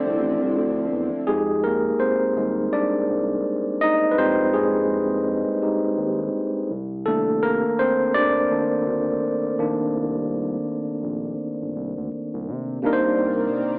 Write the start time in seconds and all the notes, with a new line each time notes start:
Already playing: D3 F3 C4 D4 E4 C5 D5
0.06 C2
0.19 A1
0.42 C2
0.55 D2
0.92 E2
1.27 F2 G#3 D#4 G4 G#4
1.64 A#3 A#4
2.00 C4 C5
2.23 D#2
2.36 D#2 G3 G#3 D#4
2.73 D4 D5
3.09 C2
3.81 D#4 D#5
4.11 B4
4.17 F2 G#3 C4 D#4 G4 C5
4.54 G#3 G#4
5.62 G#3 D#4 G4
5.98 D#2
6.71 C2
7.06 D#3 A3 A#3 D4 A4
7.43 A#3 A#4
7.79 C4 C5
8.01 D#2
8.15 D#2 D4 D5
8.51 D#3 A#3 D4
8.87 D2
9.59 A#1 D#3 A#3 D4
9.95 C2
10.89 A#1
11.03 A#1
11.61 G1
11.76 C2
11.97 D2
12.12 C2
12.34 C2
12.48 C3
12.82 C2 C3 D#3 A#3 C4 D4 D#4 A#4 D5
12.93 C5